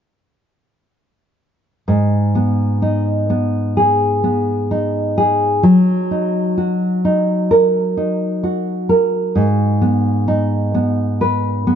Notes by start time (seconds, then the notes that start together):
1.88 G#2
2.35 B3
2.82 D#4
3.30 B3
3.77 G#4
4.24 B3
4.71 D#4
5.18 G#4
5.63 F#3
6.11 D#4
6.57 F#4
7.05 D#4
7.51 A#4
7.97 D#4
8.43 F#4
8.89 A#4
9.35 G#2
9.82 B3
10.28 D#4
10.74 B3
11.21 B4
11.67 B3